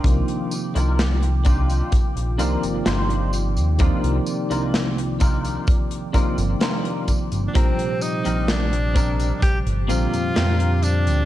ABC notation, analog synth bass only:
X:1
M:4/4
L:1/16
Q:1/4=64
K:Cm
V:1 name="Analog synth bass" clef=bass
C,, z2 C,,4- C,, B,,, B,,, C,, G,,, G,,,3 E,, | z C,, z C,,4- C,, z3 G,,, z3 G,,, | B,,, z2 B,,,4- B,,, G,,, G,,, B,,, F,, F,,3 D,, |]